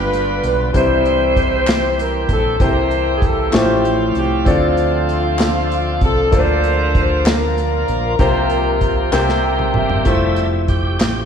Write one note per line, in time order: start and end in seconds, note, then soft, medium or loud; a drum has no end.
0.00 0.39 G1 medium
0.00 0.76 G2 medium
0.00 0.71 D3 medium
0.00 0.70 G3 medium
0.00 0.70 B3 medium
0.00 0.70 D4 soft
0.00 0.72 D4 medium
0.00 0.71 F4 medium
0.00 0.45 B4 medium
0.00 0.46 B4 medium
0.00 0.71 B4 medium
0.13 closed hi-hat medium
0.44 0.72 B1 medium
0.44 0.74 B4 medium
0.44 closed hi-hat medium
0.48 0.61 B4 medium
0.73 2.25 C2 medium
0.73 1.63 C3 medium
0.73 2.56 E3 medium
0.73 2.56 G3 medium
0.73 2.56 C4 soft
0.73 2.57 C4 medium
0.73 2.57 E4 medium
0.73 2.57 G4 medium
0.73 2.57 C5 medium
0.73 2.03 C5 loud
0.73 kick medium
0.73 closed hi-hat medium
0.78 2.27 E4 medium
0.78 2.27 G4 medium
0.78 2.27 C5 medium
1.05 closed hi-hat soft
1.36 kick medium
1.36 closed hi-hat soft
1.67 snare loud
1.67 clap medium
1.67 closed hi-hat medium
1.99 2.31 A#4 medium
1.99 closed hi-hat medium
2.29 2.58 A#1 medium
2.29 2.64 A4 medium
2.29 kick medium
2.29 closed hi-hat medium
2.33 2.62 A4 medium
2.60 3.49 C2 medium
2.60 3.50 C3 medium
2.60 2.67 D#3 soft
2.60 3.53 A#3 medium
2.60 3.53 C4 medium
2.60 3.54 E4 soft
2.60 3.51 E4 medium
2.60 3.50 G4 medium
2.60 3.52 G4 soft
2.60 3.51 G4 medium
2.60 3.52 C5 medium
2.60 3.23 C5 medium
2.60 3.16 C5 medium
2.60 kick loud
2.60 closed hi-hat medium
2.66 3.56 E3 medium
2.91 closed hi-hat medium
3.17 3.28 G#4 medium
3.22 3.54 A4 medium
3.22 kick medium
3.22 closed hi-hat soft
3.27 3.59 A4 medium
3.51 4.12 A1 medium
3.51 4.42 A2 medium
3.51 4.44 F3 medium
3.51 4.46 A3 medium
3.51 4.43 C4 medium
3.51 4.45 F4 medium
3.51 4.44 F4 medium
3.51 4.46 G4 medium
3.51 3.89 G4 medium
3.51 3.59 C5 medium
3.51 snare medium
3.51 clap medium
3.51 closed hi-hat medium
3.55 4.44 C#4 medium
3.55 3.90 G4 medium
3.60 4.50 C5 medium
3.85 closed hi-hat medium
4.15 4.44 C2 medium
4.15 4.45 G4 medium
4.15 4.52 G4 medium
4.15 closed hi-hat soft
4.45 5.98 D2 medium
4.45 5.35 D3 medium
4.45 6.29 F3 medium
4.45 5.99 A3 medium
4.45 6.28 C4 medium
4.45 5.99 C4 medium
4.45 6.29 D4 medium
4.45 6.29 F4 medium
4.45 6.02 F4 medium
4.45 6.29 A4 medium
4.45 6.30 D5 medium
4.45 kick medium
4.45 closed hi-hat medium
4.51 6.07 F4 medium
4.77 closed hi-hat soft
5.09 closed hi-hat soft
5.39 snare medium
5.39 clap medium
5.39 closed hi-hat medium
5.72 closed hi-hat medium
6.01 6.33 C2 medium
6.01 6.32 A4 medium
6.01 kick medium
6.01 closed hi-hat medium
6.06 6.40 A4 loud
6.31 7.85 D2 medium
6.31 7.22 D3 medium
6.31 8.16 F3 medium
6.31 8.15 A#3 medium
6.31 8.16 A#3 medium
6.31 8.16 D4 medium
6.31 8.15 F4 medium
6.31 8.16 F4 medium
6.31 6.40 C5 medium
6.31 8.16 A5 soft
6.31 kick medium
6.31 closed hi-hat medium
6.36 7.24 F4 medium
6.36 7.24 A4 medium
6.36 7.24 C5 medium
6.36 7.29 C5 loud
6.40 8.19 D5 medium
6.64 closed hi-hat medium
6.95 kick medium
6.95 closed hi-hat soft
7.26 9.42 F4 medium
7.26 9.46 A#4 medium
7.26 snare loud
7.26 clap medium
7.26 closed hi-hat medium
7.30 9.42 A#4 medium
7.58 closed hi-hat medium
7.88 8.17 A#1 medium
7.88 closed hi-hat soft
8.19 9.09 C2 medium
8.19 9.09 C3 medium
8.19 9.13 F3 medium
8.19 9.11 A#3 medium
8.19 9.11 C4 medium
8.19 9.13 F4 medium
8.19 9.11 G4 medium
8.19 9.12 C5 medium
8.19 kick medium
8.19 closed hi-hat medium
8.50 closed hi-hat soft
8.81 kick medium
8.81 closed hi-hat soft
9.12 9.71 C2 medium
9.12 10.03 C3 medium
9.12 10.04 G3 medium
9.12 10.06 A#3 medium
9.12 10.06 C4 medium
9.12 10.06 G4 medium
9.12 10.07 G4 medium
9.12 10.06 C5 medium
9.12 snare medium
9.12 clap medium
9.29 snare medium
9.44 9.73 G5 medium
9.59 mid tom medium
9.74 10.04 G1 medium
9.74 10.05 E5 medium
9.74 mid tom medium
9.90 floor tom medium
10.05 10.96 F1 medium
10.05 10.47 G3 soft
10.05 11.25 A3 medium
10.05 10.48 A3 soft
10.05 11.25 E4 medium
10.05 11.25 F4 medium
10.05 11.25 C5 medium
10.05 10.48 E5 medium
10.05 kick medium
10.05 closed hi-hat medium
10.36 closed hi-hat soft
10.68 11.21 G4 medium
10.68 kick medium
10.68 closed hi-hat medium
11.00 11.25 A1 medium
11.00 snare medium
11.00 clap medium
11.00 closed hi-hat medium